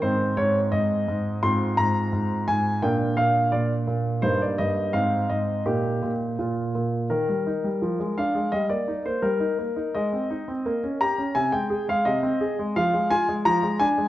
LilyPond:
<<
  \new Staff \with { instrumentName = "Grand piano" } { \time 2/4 \key aes \major \tempo 4 = 86 << { c''8 des''8 ees''4 | \key ees \major c'''8 bes''4 aes''8 | g''8 f''8 d''8 r8 | c''16 d''16 ees''8 f''8 ees''8 |
g'4 r4 | bes'4. f''8 | ees''16 d''8 c''16 bes'4 | ees''4. bes''8 |
aes''16 g''8 f''16 ees''4 | f''8 aes''8 bes''8 aes''8 | } \\ { <c' ees'>2 | <c' f'>2 | <bes d'>2 | <bes ees'>4 <c' ees'>4 |
<bes ees'>4 <bes f'>4 | r2 | r2 | r2 |
r2 | r2 | } >> }
  \new Staff \with { instrumentName = "Grand piano" } { \clef bass \time 2/4 \key aes \major aes,8 aes,8 aes,8 aes,8 | \key ees \major aes,8 aes,8 aes,8 aes,8 | bes,8 bes,8 bes,8 bes,8 | g,8 g,8 aes,8 aes,8 |
bes,8 bes,8 bes,8 bes,8 | ees16 g16 ees'16 g16 f16 aes16 d'16 aes16 | g16 bes16 ees'16 bes16 g16 ees'16 bes16 ees'16 | aes16 c'16 ees'16 c'16 bes16 des'16 g'16 des'16 |
c16 aes16 aes'16 aes16 c16 c'16 aes'16 aes16 | f16 aes16 f'16 aes16 f16 aes16 d'16 aes16 | }
>>